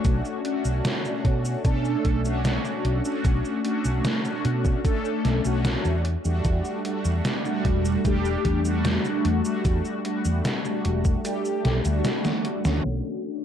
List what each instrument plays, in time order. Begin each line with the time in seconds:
Already playing: analog polysynth A3 C#4 D4 F#4
0.05 fretless electric bass B1, kick, closed hi-hat, cabasa
0.25 cabasa
0.44 analog polysynth A3 C#4 D4 F#4, closed hi-hat
0.65 fretless electric bass B1, cabasa
0.85 snare, closed hi-hat, cabasa
1.04 analog polysynth A3 C#4 D4 F#4, cabasa
1.25 fretless electric bass B2, kick, closed hi-hat
1.45 cabasa
1.64 fretless electric bass B2, analog polysynth A3 C#4 D4 A4, kick, closed hi-hat, cabasa
1.85 cabasa
2.05 fretless electric bass B1, kick, closed hi-hat
2.24 analog polysynth A3 C#4 D4 F#4, cabasa
2.45 snare, closed hi-hat, cabasa
2.65 cabasa
2.85 fretless electric bass B1, closed hi-hat
3.04 analog polysynth A3 C#4 D4 F#4, cabasa
3.25 fretless electric bass B1, kick, closed hi-hat, cabasa
3.45 cabasa
3.64 analog polysynth A3 C#4 D4 F#4, closed hi-hat
3.85 fretless electric bass B1, cabasa
4.05 snare, closed hi-hat, cabasa
4.24 analog polysynth A3 C#4 D4 F#4, cabasa
4.45 fretless electric bass B2, closed hi-hat
4.65 kick, cabasa
4.84 analog polysynth A3 C#4 D4 A4, kick, closed hi-hat, cabasa
5.05 cabasa
5.25 fretless electric bass B1, snare, closed hi-hat
5.44 fretless electric bass B1, analog polysynth A3 C#4 D4 F#4, cabasa
5.65 snare, closed hi-hat, cabasa
5.85 fretless electric bass E2, cabasa
6.05 closed hi-hat
6.24 fretless electric bass E2, analog polysynth G3 A3 D4 F#4, cabasa
6.45 fretless electric bass E2, kick, closed hi-hat, cabasa
6.65 cabasa
6.84 analog polysynth G3 A3 D4 F#4, closed hi-hat
7.05 fretless electric bass E2, cabasa
7.25 snare, closed hi-hat, cabasa
7.45 analog polysynth G3 A3 D4 F#4, cabasa
7.65 fretless electric bass E1, kick, closed hi-hat
7.85 cabasa
8.04 fretless electric bass E1, analog polysynth G3 A3 D4 G4, kick, closed hi-hat, cabasa
8.25 cabasa
8.45 fretless electric bass E2, kick, closed hi-hat
8.64 analog polysynth G3 A3 D4 F#4, cabasa
8.85 snare, closed hi-hat, cabasa
9.05 cabasa
9.25 fretless electric bass E2, closed hi-hat
9.44 analog polysynth G3 A3 D4 F#4, cabasa
9.65 fretless electric bass E2, kick, closed hi-hat, cabasa
9.85 cabasa
10.04 analog polysynth G3 A3 D4 F#4, closed hi-hat
10.25 fretless electric bass E2, cabasa
10.45 snare, closed hi-hat, cabasa
10.64 analog polysynth G3 A3 D4 F#4, cabasa
10.85 fretless electric bass E1, closed hi-hat
11.05 kick, cabasa
11.24 analog polysynth G3 A3 D4 G4, closed hi-hat, cabasa
11.45 cabasa
11.65 fretless electric bass B1, snare, closed hi-hat
11.84 fretless electric bass D2, analog polysynth G3 A3 D4 F#4, closed hi-hat, cabasa
12.05 snare, closed hi-hat, cabasa
12.25 snare, cabasa
12.45 closed hi-hat
12.64 fretless electric bass D2, analog polysynth A3 C#4 D4 F#4, snare, cabasa
12.85 fretless electric bass B1, crash
13.24 analog polysynth A3 C#4 D4 F#4